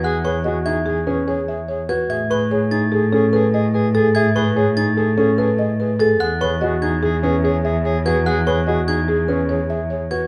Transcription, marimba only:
\new Staff \with { instrumentName = "Marimba" } { \time 5/4 \key e \major \tempo 4 = 146 fis''8 cis''8 dis''8 e''8 gis'8 b'8 cis''8 e''8 cis''8 b'8 | e''8 b'8 cis''8 r8 gis'8 a'8 b'8 dis''8 b'8 a'8 | e''8 b'8 cis''8 r8 gis'8 a'8 b'8 dis''8 b'8 a'8 | fis''8 cis''8 dis''8 r8 gis'8 b'8 cis''8 e''8 cis''8 b'8 |
fis''8 cis''8 dis''8 r8 gis'8 b'8 cis''8 e''8 cis''8 b'8 | }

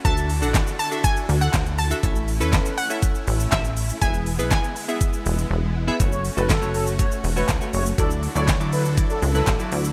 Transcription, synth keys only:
\new Staff \with { instrumentName = "Synth keys" } { \time 4/4 \key fis \minor \tempo 4 = 121 <d' fis' a' e''>8 r16 <d' fis' a' fis''>8. r16 <d' fis' a' e''>4~ <d' fis' a' e''>16 r8. <d' fis' a' e''>16 | <cis' e' a' e''>8 r16 <cis' e' a' b'>8. r16 <cis' e' a' e''>4~ <cis' e' a' e''>16 r4 | <b e' gis' e''>8 r16 <b e' gis' b'>8. r16 <b e' gis' e''>4~ <b e' gis' e''>16 r8. <b e' gis' e''>16 | <a fis' cis''>8 r16 <a fis' a'>16 r16 <a fis' cis''>8 r16 <a fis' cis''>8 r16 <a fis' cis''>16 r16 <a fis' cis''>8 r16 |
<fis e' d''>8 r16 <fis e' d''>16 r16 <fis e' d''>8 r16 <fis e' d''>8 r16 <fis e' b'>16 r16 <fis e' d''>8 r16 | }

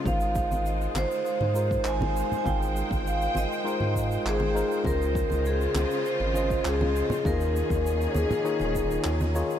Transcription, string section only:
\new Staff \with { instrumentName = "String section" } { \time 4/4 \key aes \major \tempo 4 = 100 << { f'1 | g''1 | <des f'>1 | <ees aes'>1 | } \\ { <aes c''>1~ | <aes c''>1~ | <aes c''>1 | <bes des'>1 | } >> }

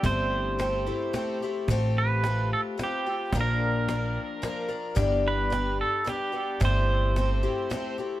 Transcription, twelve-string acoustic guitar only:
\new Staff \with { instrumentName = "Twelve-string acoustic guitar" } { \time 3/4 \key c \major \tempo 4 = 110 <g, e a c' e' g'>4 <a c' e' g'>8 <a c' e' g'>8 <a c' e' g'>8 <a c' e' g'>8 | <a c' f' g'>4 <a c' f' g'>4 <a c' f' g'>8 <c' f' g'>8 | <bes, d f bes d' bes'>4 <f bes d' bes'>4 <f bes d' bes'>8 <f bes d' bes'>8 | <g, e g b d' g'>4 <g b d' g'>4 <g b d' g'>8 <g b d' g'>8 |
<g, e a c' e' g'>4 <a c' e' g'>8 <a c' e' g'>8 <a c' e' g'>8 <a c' e' g'>8 | }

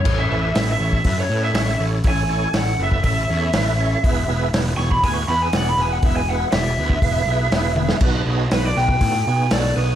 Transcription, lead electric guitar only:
\new Staff \with { instrumentName = "Lead electric guitar" } { \time 4/4 \key e \major \tempo 4 = 121 cis''16 e''4 e''4 cis''8 e''16 e''8 r8 | gis''4 fis''8 e''8 e''2~ | e''4 r8 cis'''16 b''16 gis''16 cis'''16 b''16 gis''16 fis''16 b''16 gis''16 fis''16 | e''16 gis''16 fis''8 e''2. |
r4 b'16 d''16 g''4. d''8 b'8 | }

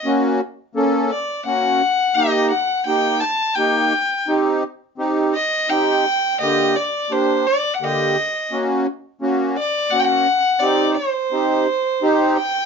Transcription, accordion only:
\new Staff \with { instrumentName = "Accordion" } { \time 3/4 \tempo 4 = 85 <ais cis' fis'>8 r8 <ais cis' a'>8 r8 <ais cis' fis'>8 r8 | <bes ees' g'>8 r8 <bes ees' g'>8 r8 <bes ees' g'>8 r8 | <c' ees' g'>8 r8 <c' ees' g'>8 r8 <c' ees' g'>8 r8 | <d bes g'>8 r8 <bes d' g'>8 r8 <d bes g'>8 r8 |
<ais cis' fis'>8 r8 <ais cis' fis'>8 r8 <ais cis' fis'>8 r8 | <c' ees' g'>8 r8 <c' ees' g'>8 r8 <c' ees' g'>8 r8 | }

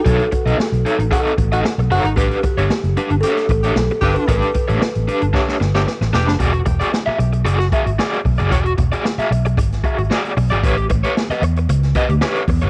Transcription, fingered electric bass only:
\new Staff \with { instrumentName = "Fingered electric bass" } { \clef bass \time 4/4 \key e \major \tempo 4 = 113 b,,16 r8 b,,16 r16 b,,16 r16 a,,16 r8 a,,8 r16 b,,16 fis,,16 gis,,16 | a,,16 r8 g,,16 r16 fis,,16 r16 g,,16 r8 a,,8 b,,16 r16 g,,16 r16 | a,,16 r8 a,,16 r16 a,,16 r16 g,,16 r8 g,,8 r16 a,,16 e,,16 fis,,16 | e,,8 e,,16 r8. b,,8 fis,,8 r16 gis,,16 r8 b,,16 fis,,16 |
e,,8 e,,16 r8. b,,8 gis,,8 r16 gis,,16 r8 b,,16 gis,,16 | a,,8 a,,16 r8. e,8 cis,8 r16 d,16 r8 e,16 g,,16 | }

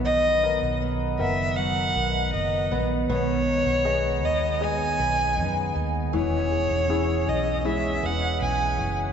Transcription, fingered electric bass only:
\new Staff \with { instrumentName = "Fingered electric bass" } { \clef bass \time 4/4 \key b \major \tempo 4 = 79 b,,8. b,,8. fis,,4 b,,8 fis,,8 ais,,8 | b,,8. b,,8. dis,4 b,,8 fis,8 dis,8 | e,,8. e,,8. b,,4 e,,8 b,,8 fis,,8 | }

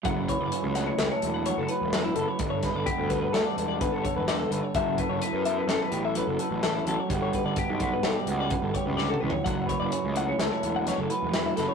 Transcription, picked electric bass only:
\new Staff \with { instrumentName = "Picked electric bass" } { \clef bass \time 5/4 \key fis \phrygian \tempo 4 = 128 fis,,8. fis,,16 r16 cis,8. cis,16 r16 e,,8. fis,,16 r16 e,,8. fis,,16 r16 | g,,8. g,,16 r16 d,8. d,16 r16 e,,8. g,,16 r16 e,,8. g,,16 r16 | fis,,8. fis,,16 r16 fis,8. fis,16 r16 a,,8. fis,,16 r16 a,,8. a,,16 r16 | g,,8. g,,16 r16 b,,8. b,,16 r16 cis,8. g,,16 r16 cis,8. cis,16 r16 |
fis,,8. fis,,16 r16 cis,8. cis,16 r16 e,,8. fis,,16 r16 e,,8. fis,,16 r16 | }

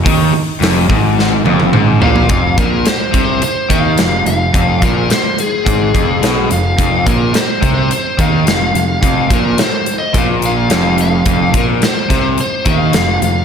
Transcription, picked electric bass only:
\new Staff \with { instrumentName = "Picked electric bass" } { \clef bass \time 4/4 \key f \minor \tempo 4 = 107 ees,8 r8 f,,8 aes,,4 f,,8 aes,,8 bes,,8 | f,,8 bes,,8 r8 c,8 r8 ees,8 f,,8 f,,8 | f,,8 bes,,8 r4 aes,,8 f,,8 b,,8 f,,8 | f,,8 bes,,8 r8 c,8 r8 ees,8 f,,8 f,,8 |
f,,8 bes,,8 r4 bes,,4 f,,4 | f,,8 bes,,8 r8 c,8 r8 ees,8 f,,8 f,,8 | }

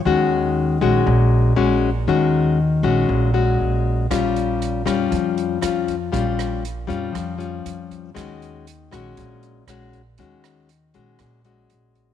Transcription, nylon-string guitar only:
\new Staff \with { instrumentName = "Nylon-string guitar" } { \time 4/4 \key ees \dorian \tempo 4 = 118 << { <aes des' ges'>4. <aes des' ges'>4. <aes des' ges'>8 r8 | <aes des' ges'>4 r8 <aes des' ges'>4 <aes des' ges'>4. | <g des' f'>4. <g des' f'>4. <g des' f'>8 r8 | <g des' f'>4 r8 <g des' f'>4 <g des' f'>4. |
<aes des' ges'>4 r8 <aes des' ges'>4. <aes des' ges'>8 r8 | <aes des' ges'>4 r8 <aes des' ges'>4 <aes des' ges'>4. | } \\ { ees2 bes,2 | ees2 bes,2 | bes,2 f2 | bes,2 f2 |
ees2 bes,2 | ees2 bes,2 | } >> }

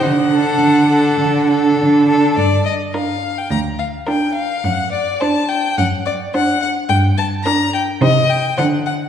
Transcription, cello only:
\new Staff \with { instrumentName = "Cello" } { \clef bass \time 4/4 \key g \minor \tempo 4 = 106 d4 d4 d4 d4 | g,4 r4 d,4 r4 | fis,4 r4 fis,4 r4 | g,4 r4 c4 d4 | }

